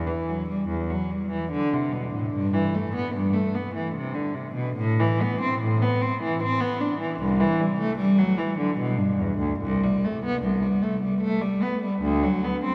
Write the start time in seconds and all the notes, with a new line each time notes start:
0.07 E3
0.29 F#3
0.49 G3
0.68 E2
0.90 F#3
1.10 G3
1.31 E3
1.51 D3
1.73 C3
1.92 B2
2.13 A2
2.34 G2
2.54 E3
2.75 A3
2.95 B3
3.15 G2
3.33 A3
3.55 B3
3.74 E3
3.95 C3
4.14 D3
4.34 C3
4.55 B2
4.76 A2
5.00 E3
5.21 B3
5.41 C4
5.62 A2
5.82 B3
6.01 C4
6.22 E3
6.43 C4
6.60 B3
6.80 D4
7.00 E3
7.19 C2
7.41 E3
7.60 G3
7.79 A3
7.98 G3
8.18 F#3
8.38 E3
8.58 D3
8.77 B2
8.98 G2
9.18 E2
9.38 D2
9.61 C2
9.84 G3
10.05 A3
10.25 B3
10.42 C2
10.62 G3
10.82 A3
11.03 G3
11.21 A3
11.41 G3
11.62 B3
11.83 G3
12.02 D2
12.24 F#3
12.44 B3
12.64 C4